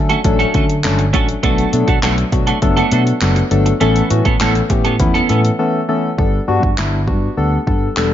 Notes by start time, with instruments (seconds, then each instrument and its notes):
Already playing: fingered electric bass D3, synth keys F#3 A3 C#4 D4 A4
0.09 clean electric guitar A3 C#4 F#4 A4, closed hi-hat
0.24 fingered electric bass A1, synth keys F#3 A3 C#4 D4 A4, muted clean electric guitar stroke, kick, closed hi-hat
0.39 clean electric guitar A3 C#4 F#4 A4, closed hi-hat
0.54 fingered electric bass D3, synth keys F#3 A3 C#4 D4 A4, clean electric guitar A3 C#4 F#4 A4, kick, closed hi-hat
0.70 muted clean electric guitar stroke, closed hi-hat
0.84 fingered electric bass G1, synth keys F#3 A3 C#4 D4 A4, snare, clap, closed hi-hat
0.99 muted clean electric guitar stroke, closed hi-hat
1.13 fingered electric bass A1, synth keys F#3 A3 C#4 D4 A4, clean electric guitar A3 C#4 F#4 A4, kick, closed hi-hat
1.28 muted clean electric guitar stroke, closed hi-hat
1.43 fingered electric bass B1, synth keys F#3 A3 B3 D4 A4, clean electric guitar A3 D4 F#4 A4, kick, closed hi-hat
1.58 closed hi-hat
1.72 fingered electric bass B2, synth keys F#3 A3 B3 D4 A4, muted clean electric guitar stroke, closed hi-hat
1.87 fingered electric bass B2, clean electric guitar A3 D4 F#4 A4, kick, closed hi-hat
2.02 fingered electric bass B1, synth keys F#3 A3 B3 D4 A4, clean electric guitar A3 D4 F#4 A4, snare, clap, closed hi-hat
2.17 muted clean electric guitar stroke, closed hi-hat
2.32 fingered electric bass B2, synth keys F#3 A3 B3 D4 F#4, muted clean electric guitar stroke, kick, closed hi-hat
2.47 clean electric guitar A3 D4 F#4 A4, closed hi-hat
2.62 fingered electric bass F#1, synth keys F#3 A3 B3 D4 A4, muted clean electric guitar stroke, kick, closed hi-hat
2.77 clean electric guitar A3 D4 F#4 A4, closed hi-hat
2.91 fingered electric bass B2, synth keys F#3 A3 B3 D4 A4, clean electric guitar A3 D4 F#4 A4, closed hi-hat
3.07 muted clean electric guitar stroke, closed hi-hat
3.21 fingered electric bass F#1, synth keys F#3 A3 B3 D4 A4, muted clean electric guitar stroke, snare, clap, closed hi-hat
3.36 muted clean electric guitar stroke, closed hi-hat
3.51 fingered electric bass G1, synth keys F#3 A3 B3 D4 A4, closed hi-hat
3.66 muted clean electric guitar stroke, closed hi-hat
3.80 fingered electric bass A1, clean electric guitar E3 B3 C#4 A4, synth keys E3 A3 B3 C#4 A4, closed hi-hat
3.96 closed hi-hat
4.10 fingered electric bass A2, synth keys E3 A3 B3 C#4 F#4, muted clean electric guitar stroke, closed hi-hat
4.25 fingered electric bass A2, clean electric guitar E3 B3 C#4 A4, kick, closed hi-hat
4.40 fingered electric bass A1, clean electric guitar E3 B3 C#4 A4, synth keys E3 A3 B3 C#4 A4, snare, clap, closed hi-hat
4.55 muted clean electric guitar stroke, closed hi-hat
4.70 fingered electric bass A2, synth keys E3 A3 B3 C#4 G4, muted clean electric guitar stroke, kick, closed hi-hat
4.85 clean electric guitar E3 B3 C#4 A4, closed hi-hat
4.99 fingered electric bass E2, synth keys E3 A3 B3 C#4 E4, muted clean electric guitar stroke, kick, closed hi-hat
5.14 clean electric guitar E3 B3 C#4 A4, closed hi-hat
5.29 fingered electric bass A2, synth keys E3 A3 B3 C#4 A4, clean electric guitar E3 B3 C#4 A4, closed hi-hat
5.44 muted clean electric guitar stroke, closed hi-hat
5.59 synth keys E3 A3 B3 C#4 A4
5.88 synth keys E3 A3 B3 C#4 A4
6.18 fingered electric bass G1, synth keys G3 B3 D4 A4, kick
6.48 fingered electric bass G2, synth keys G3 B3 D4 F#4
6.63 fingered electric bass G2, kick
6.77 fingered electric bass G1, synth keys G3 B3 D4 E4, snare, clap
7.07 fingered electric bass G2, synth keys G3 B3 D4 F#4, kick
7.37 fingered electric bass D2, synth keys G3 B3 D4 A4
7.67 fingered electric bass G2, synth keys G3 B3 D4 A4, kick
7.96 fingered electric bass E1, synth keys G3 B3 D4 A4, snare, clap